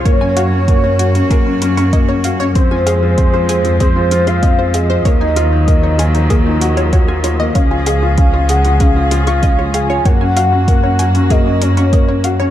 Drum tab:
HH |x-x-x-xxx-xxx-x-|x-x-x-xxx-xxx-x-|x-x-x-xxx-xxx-x-|x-x-x-xxx-xxx-x-|
BD |o---o---o---o---|o---o---o---o---|o---o---o---o---|o---o---o---o---|

HH |x-x-x-xxx-xxx-x-|
BD |o---o---o---o---|